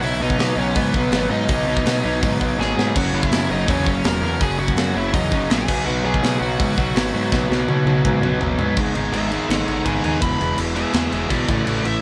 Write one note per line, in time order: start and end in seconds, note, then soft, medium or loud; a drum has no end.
0.02 0.18 B1 loud
0.02 0.20 B2 loud
0.02 0.21 F#3 loud
0.02 0.22 B3 loud
0.02 0.22 D#4 loud
0.02 0.21 E4 medium
0.02 0.21 E5 medium
0.02 open hi-hat medium
0.19 0.36 B1 medium
0.19 0.38 B2 medium
0.19 0.38 F#3 medium
0.19 0.39 B3 medium
0.19 0.56 D#4 medium
0.19 0.39 D#4 loud
0.19 0.59 D#5 medium
0.30 kick medium
0.38 0.57 B2 medium
0.38 0.54 B2 loud
0.38 0.58 F#3 loud
0.38 0.58 B3 loud
0.38 0.58 D#4 loud
0.38 snare loud
0.38 open hi-hat medium
0.56 0.73 B1 medium
0.56 0.75 B2 medium
0.56 0.76 F#3 loud
0.56 0.76 B3 loud
0.56 0.75 C#4 medium
0.56 0.76 D#4 loud
0.56 0.76 C#5 medium
0.75 0.91 G#2 loud
0.75 0.93 B2 medium
0.75 0.94 F#3 loud
0.75 1.27 B3 medium
0.75 0.94 B3 loud
0.75 0.95 D#4 medium
0.75 1.30 B4 medium
0.75 kick loud
0.75 open hi-hat medium
0.94 1.10 B1 loud
0.94 1.11 B2 medium
0.94 1.12 F#3 loud
0.94 1.12 B3 loud
0.94 1.12 D#4 loud
0.94 kick medium
1.12 1.28 G#1 loud
1.12 1.30 B2 loud
1.12 1.31 F#3 medium
1.12 1.31 B3 loud
1.12 1.31 D#4 medium
1.12 snare loud
1.12 open hi-hat medium
1.30 1.46 G#2 medium
1.30 1.47 B2 medium
1.30 1.49 F#3 medium
1.30 1.49 B3 medium
1.30 2.36 D#4 medium
1.30 1.49 D#4 loud
1.30 2.36 D#5 medium
1.48 1.64 B1 loud
1.48 1.66 B2 loud
1.48 1.68 F#3 loud
1.48 1.67 B3 loud
1.48 1.68 D#4 loud
1.48 kick loud
1.48 open hi-hat medium
1.67 1.83 B1 loud
1.67 1.85 B2 medium
1.67 1.86 F#3 loud
1.67 1.86 B3 medium
1.67 1.86 D#4 loud
1.77 kick medium
1.85 2.01 B2 medium
1.85 2.03 B2 medium
1.85 2.04 F#3 medium
1.85 2.04 B3 loud
1.85 2.04 D#4 loud
1.85 snare loud
1.85 open hi-hat medium
2.04 2.20 B1 medium
2.04 2.21 B2 medium
2.04 2.23 F#3 loud
2.04 2.23 B3 loud
2.04 2.23 D#4 loud
2.22 2.38 G#2 loud
2.22 2.39 B2 loud
2.22 2.40 F#3 loud
2.22 2.40 B3 medium
2.22 2.40 D#4 medium
2.22 kick loud
2.22 open hi-hat medium
2.40 2.56 B1 loud
2.40 2.57 B2 medium
2.40 2.58 F#3 loud
2.40 2.58 B3 loud
2.40 2.59 D#4 loud
2.40 kick medium
2.58 2.74 G#1 medium
2.58 2.75 B2 medium
2.58 2.77 F#3 medium
2.58 2.76 B3 medium
2.58 2.77 D#4 loud
2.58 2.94 G#4 medium
2.58 2.97 G#5 loud
2.58 snare medium
2.77 2.92 G#2 medium
2.77 2.94 B2 medium
2.77 2.96 F#3 medium
2.77 2.94 B3 medium
2.77 2.95 D#4 medium
2.77 snare medium
2.95 3.11 F#1 medium
2.95 3.13 F#2 medium
2.95 3.13 C#3 medium
2.95 3.14 F#3 loud
2.95 3.14 A#3 loud
2.95 3.14 C#4 loud
2.95 3.13 F#4 medium
2.95 3.15 F#5 medium
2.95 kick loud
2.95 crash loud
3.12 3.28 F#1 medium
3.12 3.30 F#2 medium
3.12 3.31 C#3 medium
3.12 3.32 F#3 medium
3.12 3.32 A#3 medium
3.12 3.33 C#4 medium
3.12 3.48 E4 medium
3.12 3.51 E5 loud
3.23 kick medium
3.31 3.48 F#2 medium
3.31 3.47 F#2 loud
3.31 3.48 C#3 medium
3.31 3.49 F#3 medium
3.31 3.49 A#3 medium
3.31 3.49 C#4 loud
3.31 snare loud
3.31 open hi-hat medium
3.49 3.65 F#1 medium
3.49 3.66 F#2 loud
3.49 3.67 C#3 loud
3.49 3.68 F#3 loud
3.49 3.68 A#3 loud
3.49 3.68 C#4 loud
3.49 3.68 D#4 medium
3.49 3.68 D#5 medium
3.67 3.84 E2 loud
3.67 3.84 F#2 medium
3.67 3.85 C#3 medium
3.67 3.86 F#3 medium
3.67 3.85 A#3 loud
3.67 3.86 C#4 loud
3.67 4.03 C#4 medium
3.67 4.06 C#5 medium
3.67 kick loud
3.67 open hi-hat medium
3.85 4.02 F#1 medium
3.85 4.03 F#2 medium
3.85 4.03 C#3 loud
3.85 4.04 F#3 medium
3.85 4.04 A#3 loud
3.85 4.04 C#4 loud
3.85 kick medium
4.03 4.19 E1 medium
4.03 4.21 F#2 medium
4.03 4.22 C#3 medium
4.03 4.23 F#3 medium
4.03 4.23 A#3 loud
4.03 4.23 C#4 medium
4.03 4.40 A#4 medium
4.03 snare loud
4.03 open hi-hat medium
4.07 4.43 A#5 loud
4.21 4.38 E2 medium
4.21 4.39 F#2 medium
4.21 4.40 C#3 medium
4.21 4.41 F#3 medium
4.21 4.40 A#3 medium
4.21 4.41 C#4 medium
4.40 4.57 F#1 medium
4.40 4.58 F#2 loud
4.40 4.58 C#3 medium
4.40 4.59 F#3 loud
4.40 4.59 A#3 loud
4.40 4.60 C#4 loud
4.40 4.59 G#4 medium
4.40 4.58 G#5 loud
4.40 kick loud
4.40 open hi-hat medium
4.58 4.74 F#1 medium
4.58 4.75 F#2 medium
4.58 4.76 C#3 medium
4.58 4.77 F#3 medium
4.58 4.77 A#3 medium
4.58 4.77 C#4 loud
4.58 4.93 F#4 medium
4.58 4.97 F#5 loud
4.68 kick medium
4.75 4.92 F#2 loud
4.75 4.94 F#2 medium
4.75 4.95 C#3 loud
4.75 4.96 F#3 medium
4.75 4.95 A#3 medium
4.75 4.96 C#4 loud
4.75 snare loud
4.75 open hi-hat medium
4.95 5.11 F#1 medium
4.95 5.12 F#2 loud
4.95 5.12 C#3 loud
4.95 5.13 F#3 loud
4.95 5.13 A#3 loud
4.95 5.13 C#4 loud
4.95 5.14 E4 medium
4.95 5.14 E5 medium
5.13 5.29 E2 medium
5.13 5.31 F#2 medium
5.13 5.31 C#3 medium
5.13 5.33 F#3 medium
5.13 5.32 A#3 medium
5.13 5.33 C#4 loud
5.13 5.48 D#4 medium
5.13 5.48 D#5 loud
5.13 kick loud
5.13 open hi-hat medium
5.32 5.47 F#1 loud
5.32 5.48 F#2 medium
5.32 5.49 C#3 loud
5.32 5.50 F#3 loud
5.32 5.50 A#3 loud
5.32 5.51 C#4 loud
5.32 kick medium
5.50 5.66 A#1 loud
5.50 5.67 F#2 medium
5.50 5.67 C#3 medium
5.50 5.68 F#3 medium
5.50 5.68 A#3 loud
5.50 5.68 C#4 loud
5.50 5.84 G#4 medium
5.50 5.85 G#5 loud
5.50 snare loud
5.50 open hi-hat medium
5.68 5.84 B1 medium
5.68 5.86 B2 medium
5.68 5.86 F#3 loud
5.68 5.87 B3 loud
5.68 5.87 D#4 loud
5.68 kick loud
5.68 crash loud
5.86 6.02 B1 loud
5.86 6.04 B2 loud
5.86 6.04 F#3 loud
5.86 6.05 B3 loud
5.86 6.05 D#4 loud
5.86 6.03 F#4 medium
5.86 6.05 F#5 loud
6.04 6.20 B1 loud
6.04 6.23 B2 medium
6.04 6.23 F#3 medium
6.04 6.24 B3 loud
6.04 6.24 D#4 medium
6.04 6.39 G#4 medium
6.04 6.39 G#5 medium
6.14 kick medium
6.23 6.40 B2 medium
6.23 6.38 B2 loud
6.23 6.40 F#3 medium
6.23 6.41 B3 medium
6.23 6.42 D#4 loud
6.23 snare loud
6.23 open hi-hat medium
6.39 6.56 B1 loud
6.39 6.58 B2 medium
6.39 6.58 F#3 loud
6.39 6.59 B3 loud
6.39 6.60 D#4 loud
6.39 8.36 F#4 medium
6.39 8.36 F#5 loud
6.59 6.75 G#2 loud
6.59 6.76 B2 medium
6.59 6.76 F#3 loud
6.59 6.78 B3 medium
6.59 6.78 D#4 medium
6.59 kick loud
6.59 open hi-hat medium
6.77 6.93 B1 loud
6.77 6.94 B2 loud
6.77 6.94 F#3 loud
6.77 6.95 B3 loud
6.77 6.96 D#4 loud
6.77 kick medium
6.95 7.11 G#1 medium
6.95 7.13 B2 medium
6.95 7.13 F#3 medium
6.95 7.14 B3 medium
6.95 7.15 D#4 medium
6.95 snare loud
6.95 open hi-hat medium
7.14 7.29 G#2 medium
7.14 7.31 B2 medium
7.14 7.31 F#3 medium
7.14 7.32 B3 medium
7.14 7.32 D#4 loud
7.32 7.47 B1 loud
7.32 7.49 B2 medium
7.32 7.49 F#3 loud
7.32 7.50 B3 loud
7.32 7.50 D#4 loud
7.32 kick loud
7.32 snare medium
7.50 7.65 B1 loud
7.50 7.67 B2 medium
7.50 7.68 F#3 medium
7.50 7.69 B3 loud
7.50 7.69 D#4 loud
7.50 snare medium
7.68 7.83 B2 loud
7.68 7.84 B2 medium
7.68 7.85 F#3 medium
7.68 7.86 B3 medium
7.68 7.86 D#4 loud
7.68 high tom medium
7.85 8.01 B1 loud
7.85 8.02 B2 loud
7.85 8.03 F#3 medium
7.85 8.03 B3 loud
7.85 8.04 D#4 loud
7.85 high tom medium
8.04 8.20 G#2 loud
8.04 8.21 B2 medium
8.04 8.21 F#3 medium
8.04 8.22 B3 medium
8.04 8.22 D#4 loud
8.04 kick loud
8.04 mid tom loud
8.21 8.37 B1 loud
8.21 8.39 B2 loud
8.21 8.39 F#3 loud
8.21 8.40 B3 loud
8.21 8.41 D#4 loud
8.21 mid tom medium
8.40 8.56 G#1 medium
8.40 8.58 B2 medium
8.40 8.58 F#3 medium
8.40 8.58 B3 medium
8.40 8.59 D#4 medium
8.40 floor tom loud
8.59 8.74 G#2 medium
8.59 8.76 B2 medium
8.59 8.76 F#3 medium
8.59 8.76 B3 medium
8.59 8.77 D#4 medium
8.59 floor tom loud
8.77 8.90 G#1 medium
8.77 8.94 G#2 medium
8.77 8.95 D#3 medium
8.77 8.96 G#3 medium
8.77 8.96 B3 medium
8.77 8.96 D#4 loud
8.77 kick loud
8.77 crash medium
8.95 9.07 G#1 medium
8.95 9.11 G#2 medium
8.95 9.12 D#3 medium
8.95 9.13 G#3 medium
8.95 9.14 B3 medium
8.95 9.14 D#4 medium
8.95 crash medium
9.12 9.37 G#1 medium
9.12 9.30 G#2 medium
9.12 9.31 D#3 medium
9.12 9.31 G#3 medium
9.12 9.32 B3 medium
9.12 9.32 D#4 medium
9.12 9.31 G#4 medium
9.12 9.31 E5 loud
9.12 crash medium
9.31 9.48 G#2 medium
9.31 9.48 D#3 medium
9.31 9.49 G#3 medium
9.31 9.49 B3 medium
9.31 9.50 D#4 medium
9.31 9.49 G#4 medium
9.31 9.50 E5 medium
9.31 crash medium
9.49 9.62 G#1 medium
9.49 9.66 G#2 medium
9.49 9.67 D#3 medium
9.49 9.67 G#3 medium
9.49 9.68 B3 medium
9.49 9.68 D#4 loud
9.49 9.66 A4 medium
9.49 9.68 F#5 medium
9.49 snare loud
9.49 crash medium
9.68 9.80 G#1 medium
9.68 9.84 G#2 medium
9.68 9.85 D#3 medium
9.68 9.85 G#3 medium
9.68 9.86 B3 medium
9.68 9.86 D#4 medium
9.68 9.85 A4 medium
9.68 9.86 F#5 medium
9.68 crash medium
9.85 9.98 G#1 medium
9.85 10.02 G#2 medium
9.85 10.03 D#3 medium
9.85 10.03 G#3 medium
9.85 10.04 B3 medium
9.85 10.04 D#4 medium
9.85 10.02 B4 medium
9.85 10.03 G#5 medium
9.85 kick medium
9.85 crash medium
10.04 10.17 D#2 medium
10.04 10.21 G#2 medium
10.04 10.21 D#3 medium
10.04 10.21 G#3 medium
10.04 10.21 B3 medium
10.04 10.22 D#4 medium
10.04 10.21 B4 medium
10.04 10.21 G#5 medium
10.04 crash medium
10.21 10.34 E1 medium
10.21 10.38 E2 medium
10.21 10.39 B2 loud
10.21 10.39 E3 medium
10.21 10.39 G#3 loud
10.21 10.39 B3 loud
10.21 10.40 E4 loud
10.21 10.57 B5 medium
10.21 kick loud
10.21 crash medium
10.39 10.53 E1 medium
10.39 10.56 E2 medium
10.39 10.57 B2 medium
10.39 10.57 E3 medium
10.39 10.57 G#3 medium
10.39 10.57 B3 medium
10.39 10.58 E4 medium
10.39 crash medium
10.58 10.83 E1 medium
10.58 10.74 E2 medium
10.58 10.75 B2 medium
10.58 10.75 E3 medium
10.58 10.75 G#3 medium
10.58 10.76 B3 medium
10.58 10.77 E4 medium
10.58 crash medium
10.75 10.92 E2 medium
10.75 10.92 B2 medium
10.75 10.93 E3 medium
10.75 10.93 G#3 medium
10.75 10.93 B3 medium
10.75 10.94 E4 medium
10.75 10.93 G#4 medium
10.75 10.93 E5 medium
10.75 crash medium
10.93 11.10 E2 medium
10.93 11.07 E2 medium
10.93 11.11 B2 loud
10.93 11.12 E3 loud
10.93 11.11 G#3 medium
10.93 11.12 B3 loud
10.93 11.13 E4 loud
10.93 11.10 G#4 medium
10.93 11.10 E5 medium
10.93 snare loud
10.93 crash medium
11.11 11.25 E1 medium
11.11 11.28 E2 medium
11.11 11.28 B2 medium
11.11 11.30 E3 medium
11.11 11.30 G#3 medium
11.11 11.30 B3 medium
11.11 11.31 E4 medium
11.11 11.29 G#4 medium
11.11 11.30 E5 medium
11.11 crash medium
11.29 11.43 B1 medium
11.29 11.47 E2 medium
11.29 11.47 B2 medium
11.29 11.48 E3 medium
11.29 11.48 G#3 medium
11.29 11.48 B3 medium
11.29 11.50 E4 medium
11.29 11.47 F#4 medium
11.29 11.48 D5 medium
11.29 kick medium
11.29 crash medium
11.48 11.61 A1 medium
11.48 11.65 A2 medium
11.48 11.66 E3 medium
11.48 11.66 A3 medium
11.48 11.66 C#4 loud
11.48 11.68 E4 medium
11.48 11.67 F#4 medium
11.48 11.68 D5 medium
11.48 kick loud
11.48 crash medium
11.66 11.79 A1 medium
11.66 11.83 A2 loud
11.66 11.85 E3 medium
11.66 11.84 A3 medium
11.66 11.84 C#4 medium
11.66 11.86 E4 loud
11.66 11.85 F#4 medium
11.66 11.86 D5 medium
11.66 crash medium
11.84 11.97 A1 medium
11.84 12.02 A2 medium
11.84 12.02 E3 medium
11.84 12.02 A3 medium
11.84 12.02 C#4 medium
11.84 12.02 E4 loud
11.84 12.02 E5 loud
11.84 crash medium